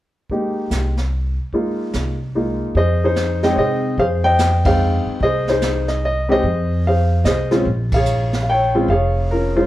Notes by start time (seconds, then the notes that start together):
0.30 G#3 A#3 D#4 G4, brush sweep, kick
0.70 C2, snare, hi-hat pedal
0.97 snare
1.53 G#3 A#3 D#4 F4, brush sweep, kick
1.93 C2, snare, hi-hat pedal
2.35 G#3 A#3 D#4 F4
2.75 F2 G#4 C5 D#5, brush sweep, kick
3.04 D#4 G#4 C5
3.16 snare, hi-hat pedal
3.43 G#3 C4 D#4 D#5 G5, snare
3.50 C#5
3.57 C3 G#4 C5 D#5
3.97 F2 G#4 C5 F5, brush sweep, kick
4.24 C5 D#5 G5
4.39 snare, hi-hat pedal
4.65 G#3 C4 D#4 G#4 C5 F5 G5, kick, ride
5.05 muted upright bass stroke
5.20 C2 G#4 C5 D#5, brush sweep, kick
5.47 D#4 G#4 C5, snare
5.62 snare, hi-hat pedal
5.88 D#5, snare
6.05 D#5
6.29 G#3 C4 D#4 G4 C5 D#5
6.33 G#4
6.43 F2, brush sweep, kick
6.87 G#4 C5 F5
7.24 C2 G#4 C5 D#5, snare, hi-hat pedal
7.51 G#3 C4 C#4 F4, snare
7.65 A#1, brush sweep, kick
7.92 F5, kick, ride
7.96 G#4 C#5
8.06 hi-hat pedal
8.33 snare
8.43 F5
8.50 C#5 G5
8.75 G#3 C4 C#4 F4
8.88 F1 G#4 C#5 F5, brush sweep, kick
9.31 C#4 F4 A#4
9.56 G#3 C#4 F4 C5